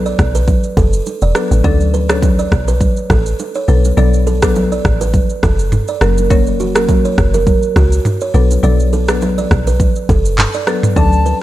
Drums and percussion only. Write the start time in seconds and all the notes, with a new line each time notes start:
0.06 shaker
0.19 kick, cross-stick, shaker
0.35 low bongo, shaker
0.48 kick, low conga, shaker
0.63 shaker
0.77 kick, low bongo, shaker
0.93 shaker
1.06 high bongo, shaker
1.21 shaker
1.35 cross-stick, shaker
1.51 high bongo, shaker
1.64 kick, low conga, shaker
1.80 shaker
1.94 low bongo, shaker
2.09 cross-stick, shaker
2.22 kick, high bongo, low conga, shaker
2.39 shaker
2.52 kick, cross-stick, shaker
2.68 low bongo, shaker
2.81 kick, low conga, shaker
2.96 shaker
3.10 kick, cross-stick, low bongo, shaker
3.26 shaker
3.39 high bongo, shaker
3.54 shaker
3.68 shaker
3.85 high bongo, shaker
3.97 low conga, shaker
4.13 shaker
4.27 low bongo, shaker
4.42 kick, cross-stick, shaker
4.56 high bongo, low conga, shaker
4.72 shaker
4.85 kick, cross-stick, shaker
5.01 low bongo, shaker
5.14 kick, low conga, shaker
5.29 shaker
5.43 kick, cross-stick, low bongo, shaker
5.59 shaker
5.72 mid tom, high bongo, shaker
5.88 shaker
6.01 cross-stick, shaker
6.18 high bongo, shaker
6.30 kick, low conga, shaker
6.47 shaker
6.60 low bongo, shaker
6.75 cross-stick, shaker
6.89 kick, high bongo, low conga, shaker
7.05 shaker
7.18 kick, cross-stick, shaker
7.34 low bongo, shaker
7.47 kick, low conga, shaker
7.62 shaker
7.76 kick, cross-stick, low bongo, shaker
7.92 shaker
8.05 mid tom, high bongo, shaker
8.21 shaker
8.34 shaker
8.51 high bongo, shaker
8.63 low conga, shaker
8.80 shaker
8.93 high bongo, low bongo, shaker
9.08 cross-stick, shaker
9.22 high bongo, low conga, shaker
9.38 low bongo, shaker
9.51 kick, cross-stick, shaker
9.67 low bongo, shaker
9.80 kick, low conga, shaker
9.95 shaker
10.09 kick, low bongo, shaker
10.25 shaker
10.38 clap, mid tom, high bongo, shaker
10.54 shaker
10.67 cross-stick, shaker
10.83 mid tom, high bongo, shaker
10.96 kick, low conga, shaker
11.13 shaker
11.26 low bongo, shaker